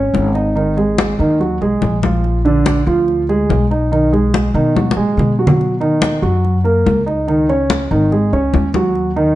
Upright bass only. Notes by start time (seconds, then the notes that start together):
Already playing: G#1
0.14 G#1
1.19 D#2
1.61 B1
1.82 A#1
2.87 D2
3.49 B1
4.54 B2
4.97 A#2
5.17 B2
6.23 F#2
6.86 C#2
7.91 G#1
8.33 C#2
8.54 D#2